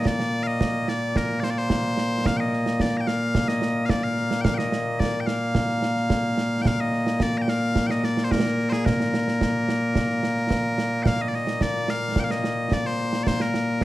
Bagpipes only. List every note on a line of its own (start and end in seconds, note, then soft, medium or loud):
0.00 13.84 A#2 medium
0.00 13.84 A#3 medium
0.06 0.43 D5 loud
0.43 0.47 F5 loud
0.47 0.89 D#5 loud
0.89 1.17 D5 loud
1.17 1.40 A#4 medium
1.40 1.44 D5 medium
1.44 1.50 C5 medium
1.50 1.58 D5 medium
1.58 2.26 C5 loud
2.26 2.37 F5 loud
2.37 2.81 D#5 medium
2.37 2.40 G5 medium
2.81 2.97 D5 medium
2.97 3.07 G5 medium
2.97 3.00 A#5 medium
3.07 3.48 F5 medium
3.48 3.86 D#5 loud
3.86 3.90 F5 medium
3.90 4.04 D5 medium
4.04 4.41 F5 medium
4.41 4.55 F5 medium
4.41 4.45 G5 medium
4.55 4.99 D#5 medium
4.55 4.58 G5 medium
4.99 5.20 D5 medium
5.20 5.27 G5 medium
5.27 6.62 F5 medium
6.62 6.67 G5 medium
6.67 6.81 F5 loud
6.81 7.22 D#5 medium
7.22 7.38 D5 loud
7.38 7.49 G5 medium
7.38 7.42 A#5 medium
7.49 7.87 F5 loud
7.87 7.91 G5 medium
7.91 8.04 D#5 medium
8.04 8.24 D5 medium
8.24 8.31 C5 medium
8.31 8.69 A#4 medium
8.69 8.85 G#4 medium
8.69 8.73 C5 medium
8.85 11.03 A#4 medium
11.03 11.22 F5 loud
11.03 11.07 G5 medium
11.22 11.28 D#5 medium
11.28 11.35 D5 medium
11.35 11.62 D#5 loud
11.62 11.90 D5 loud
11.90 12.20 F5 loud
12.20 12.24 G5 medium
12.24 12.31 F5 medium
12.31 12.73 D#5 loud
12.73 12.86 D5 medium
12.86 13.24 C5 medium
13.24 13.41 C5 loud
13.24 13.28 D5 loud
13.41 13.83 A#4 medium